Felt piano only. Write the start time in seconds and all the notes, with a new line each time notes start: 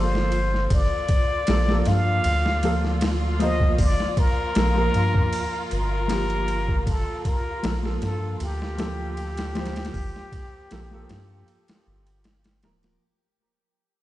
Already playing: F3 A#3 A4
1.48 F3 A#3 A4
1.68 F3 A#3 A4
2.63 F3 A#3 A4
3.39 F3 A#3 C5
4.56 F3 A#3 A4
4.75 F3 A#3 A#4
6.08 F3 A#3 G4
7.63 F3 A#3 A4
7.83 F3 A#3 A4
8.78 F3 A#3 A4
9.55 F3 A#3 C5
10.71 F3 A#3 A4
10.91 F3 A#3 A4
12.63 F3 A#3 A#4